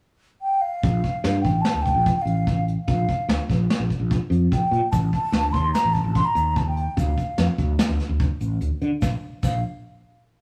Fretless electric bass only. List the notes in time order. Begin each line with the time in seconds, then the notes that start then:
0.83 A#1
1.24 G2
1.44 A1
1.74 D2
1.94 A#1
2.25 A1
2.88 A#1
3.29 D2
3.49 A#1
3.80 A#1
4.00 A#1
4.30 F2
4.51 A#1
4.71 A#2
4.92 A1
5.32 D2
5.54 D#2
5.84 A1
6.04 A1
6.35 D#2
6.97 D2
7.38 F2
7.58 D2
7.89 D2
8.09 D2
8.41 A1
8.61 D2
8.82 D3
9.02 A#1
9.43 A#1